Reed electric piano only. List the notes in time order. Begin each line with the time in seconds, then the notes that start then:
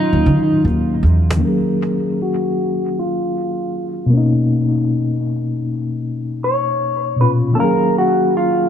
Already playing: D#3 F#3 C#4 F4
1.37 D#3 A#3
1.41 C#4
1.46 F#3 G#4
4.06 B2 A#3
4.14 C#4 D#4
7.16 A#2 B2
7.21 C#4 F4
7.52 D#3 A#3
7.57 C#4 F5
7.62 F#3 G#4